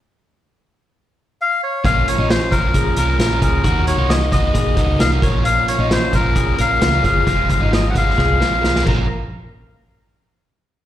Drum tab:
CC |----------------|----------------|----------------|----------------|
HH |----------------|x-x-x-x-x-x-x-x-|x-x-x-x-x-x-x-x-|x-x-x-x-x-x-x-x-|
SD |----------------|----o-------o---|----o-------o---|----o-------o---|
BD |----------------|o-----o-o-----o-|o-----o-o-o---o-|------o-o-----o-|

CC |--------------x-|----------------|
HH |x-x-x-x---------|----------------|
SD |----o---o-o-oo--|----------------|
BD |o-o---o-o-----o-|----------------|